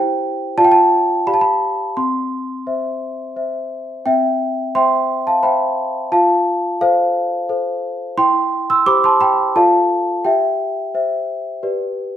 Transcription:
celesta
Already playing: E4 G4 C5 G5
0.58 F4 D5 F5 A5
0.65 G5
0.72 A5
1.27 G4 D5 F5 B5
1.34 A5
1.41 B5
1.97 C4 C6
2.67 C5 E5
3.36 C5 E5
4.06 C4 E5 G5
4.75 C5 E5 G5 C6
5.27 F5 A5
5.43 C5 E5 G5 B5
6.12 F4 F5 A5
6.81 A4 C5 F5
7.49 A4 C5
8.18 E4 G5 C6
8.70 C6 E6
8.86 G4 C5 B5 D6
9.04 A5 C6
9.21 G5 B5
9.55 F4 A4 D5 F5 A5
10.25 G4 E5 G5
10.94 C5 E5
11.63 G4 B4 D5

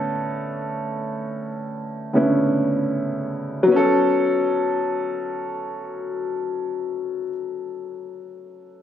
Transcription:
grand piano
Already playing: A2 D3 B3 C#4 A4
2.13 A2 C#3 B3 C#4 E4
2.21 D3
3.63 F#3
3.67 B3
3.72 C#4
3.76 A4

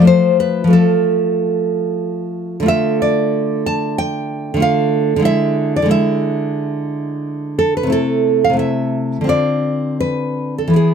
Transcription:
nylon-string guitar
0.00 F3 A3
0.05 F4 C5
0.40 B4
0.64 F3 A3
0.70 F4 A4
2.60 D3 A3
2.66 F4 E5
3.02 D5
3.66 A5
3.98 G5
4.54 D3 A3
4.60 F4 F5
5.16 D3 G#3
5.22 E4 E5
5.76 D5
5.82 D3 G#3
5.89 E4 E5
7.59 A4
7.77 B4
7.83 C3 A3
7.90 E4 A4
8.44 F5
8.50 C3 A3
8.57 E4 E5
9.21 D3 C4
9.27 F4 D5
10.00 B4
10.58 A4
10.68 E3 B3
10.73 E4 G#4

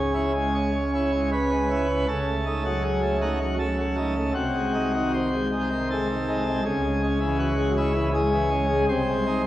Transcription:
pipe organ
Already playing: C#2 C#3 C#4 G#4
0.14 C#4 E4
0.34 G#3
0.54 C#5
0.75 C#4
0.94 C#4 E4
1.13 G#3
1.32 C#4 B4
1.51 G#3
1.70 C#4 E4
1.89 C#4
2.08 C#2 C#3 A4
2.28 A3
2.46 A3 D#4
2.65 F#3
2.83 G#4
3.02 A3
3.21 A3 D#4 F#4
3.40 F#3
3.59 A3 A4
3.78 F#3
3.97 A3 D#4
4.15 A3
4.34 C2 C3 F#4
4.54 G#3
4.74 G#3 D#4
4.94 D#3
5.14 C5
5.33 G#3
5.53 G#3 D#4
5.72 D#3
5.90 G#3 A4
6.09 D#3
6.28 G#3 D#4
6.47 G#3
6.66 C#2 C#3 G#4
6.84 G#3
7.03 G#3 C#4
7.21 E3
7.39 F#4
7.58 G#3
7.77 G#3 C#4 E4
7.95 E3
8.14 G#3 G#4
8.33 E3
8.51 G#3 C#4
8.70 G#3
8.89 C2 C3 C5
9.08 G#3
9.26 G#3 D#4

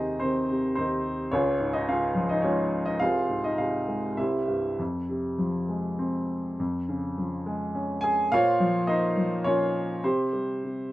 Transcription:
upright piano
Already playing: D#2 C3 D#4 G#4 C5 D#5
0.20 D#3 C4 D#4 C5
0.50 C3
0.75 D#2 C4 D#4 C5
1.32 C#2 C#4 F4 G#4 C#5
1.60 G#2
1.73 D#4 D#5
1.88 C#3 F4 G#4 F5
2.15 F3
2.29 D#4 D#5
2.42 G#3 C#4 F4 C#5
2.86 D#4 D#5
3.00 C2 F4 G#4 C5 F5
3.29 G#2
3.44 D#4 D#5
3.58 C3 F4 G#4 F5
3.88 G#3
4.17 C2 E4 G4 C5 E5
4.48 G2
4.79 F2
5.09 C3
5.38 F3
5.69 G#3
5.99 C4
6.60 F2
6.89 C#3
7.18 F3
7.46 G#3
7.75 C#4
8.01 G#4 G#5
8.32 A#2 F4 C5 C#5 F5
8.60 F3
8.87 A#3 D#4 C5 D#5
9.17 F3
9.44 A#2 C#4 F4 C#5
10.04 C3 G4 C5
10.33 G3
10.64 C3

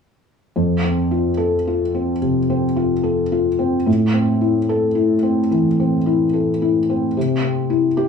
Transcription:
felt piano
0.56 F2
0.84 C4
1.11 F4
1.37 A4
1.67 F4
1.94 C4
2.22 C3
2.50 C4
2.76 F4
3.04 A4
3.32 F4
3.59 C4
3.86 A2
4.14 C4
4.41 E4
4.69 A4
4.95 E4
5.23 C4
5.51 E3
5.80 C4
6.06 E4
6.33 A4
6.62 E4
6.90 C4
7.17 C3
7.43 C4
7.70 E4
7.97 G4

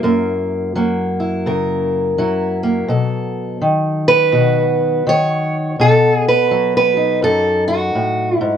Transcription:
steel-string acoustic guitar
Already playing: F#3 E4
0.03 F#2 A#3
0.76 F#3 A#3
1.20 E4
1.46 C#3 A#4
2.18 F#3 E4
2.63 A#3
2.88 B2 A4
3.61 D#3
4.08 B4
4.32 B2 F#4
5.07 D#3 C#5
5.79 B2 A4
6.16 G#4
6.28 B4
6.51 F#3
6.77 B4
6.97 D#4
7.22 F#2 A4
7.68 F#4
7.95 A2
8.37 E4
8.41 G#2

